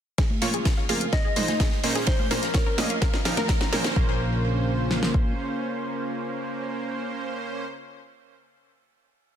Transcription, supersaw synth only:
0.42 0.49 A#2 medium
0.42 0.49 A#3 medium
0.42 0.49 F4 medium
0.42 0.49 C#5 medium
0.89 0.97 A#3 medium
0.89 0.97 F4 medium
0.89 0.97 F5 loud
1.36 1.44 A#2 medium
1.36 1.44 G#3 medium
1.36 1.44 D#4 medium
1.36 1.44 C5 loud
1.84 2.28 A#2 medium
1.84 2.28 A#3 medium
1.84 2.28 C#4 medium
1.84 2.28 C5 medium
2.31 2.38 A#2 medium
2.31 2.38 A#3 medium
2.31 2.38 C#4 medium
2.31 2.38 C5 medium
2.78 2.86 A#2 medium
2.78 2.86 A#3 medium
2.78 2.86 C#4 medium
2.78 2.86 D#5 loud
3.25 3.33 A#2 medium
3.25 3.33 F3 medium
3.25 3.33 D#4 medium
3.25 3.33 A#4 loud
3.73 4.17 A#2 medium
3.73 3.95 A#3 medium
3.73 3.95 C#4 medium
3.73 3.95 C5 medium
3.96 7.65 A#3 medium
3.96 7.65 C#4 medium
3.96 7.65 C5 medium

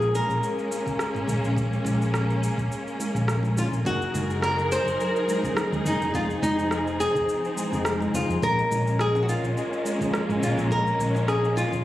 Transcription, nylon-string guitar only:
0.00 0.15 G#4 loud
0.15 1.25 A#4 medium
3.58 3.66 F4 medium
3.86 4.39 F#4 loud
4.43 4.72 A#4 medium
4.72 5.89 C5 loud
5.87 6.13 D#4 medium
6.15 6.22 F4 medium
6.43 7.01 D#4 medium
7.00 8.10 G#4 medium
8.15 8.41 F4 medium
8.43 8.96 A#4 loud
9.01 9.21 G#4 medium
9.23 9.29 F#4 medium
9.29 10.42 F4 medium
10.43 10.72 F4 medium
10.72 11.28 A#4 medium
11.28 11.55 G#4 medium
11.57 11.84 F4 medium

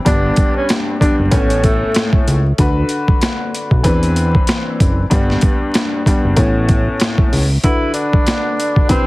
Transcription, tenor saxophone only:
0.06 0.53 D4 medium
0.57 0.68 C#4 medium
1.01 1.17 D4 medium
1.31 1.60 C#4 medium
1.64 2.10 A3 medium
7.64 7.92 E4 loud
7.94 8.85 D4 medium
8.90 9.07 C4 medium

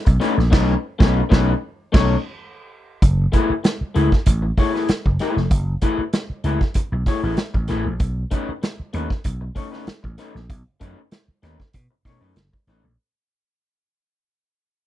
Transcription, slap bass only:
0.07 0.17 B1 medium
0.38 0.48 A#1 medium
0.53 0.74 B1 loud
1.00 1.21 B1 loud
1.31 1.52 B1 loud
1.94 2.15 B1 loud
3.02 3.25 F#1 loud
3.50 muted slap bass stroke soft
3.81 muted slap bass stroke medium
3.96 4.08 C#2 medium
4.26 4.50 A1 medium
4.89 muted slap bass stroke soft
5.06 5.16 F#1 loud
5.36 5.47 F1 medium
5.51 5.74 F#1 loud
5.98 muted slap bass stroke medium
6.30 muted slap bass stroke soft
6.44 6.56 C#2 loud
6.92 7.03 B1 medium
7.23 7.34 A1 medium
7.54 7.65 A1 medium
7.69 7.82 A1 medium
7.86 7.97 A#1 medium
8.00 8.23 B1 loud
8.49 muted slap bass stroke soft
8.80 muted slap bass stroke soft
8.94 9.06 D#2 medium
9.25 9.48 B1 medium
9.87 muted slap bass stroke soft
10.04 10.15 A1 loud
10.35 10.46 A#1 medium
10.50 10.62 B1 loud
10.81 10.93 F#2 loud
11.28 muted slap bass stroke soft
11.43 11.55 D#2 medium
11.74 11.86 B2 loud
12.05 12.17 B2 medium
12.21 12.32 F#2 medium
12.36 12.49 F#1 medium
12.67 12.80 A1 medium
12.84 12.95 A#1 medium

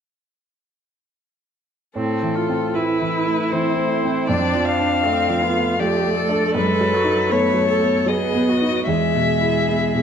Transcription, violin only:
1.96 2.75 A4 medium
2.74 3.53 B4 soft
3.51 4.27 C5 soft
4.27 4.66 D5 medium
4.65 5.81 F5 medium
5.80 6.54 D5 medium
6.55 7.33 B4 medium
7.31 8.09 C#5 medium
8.08 8.86 D#5 medium
8.86 10.02 E5 medium

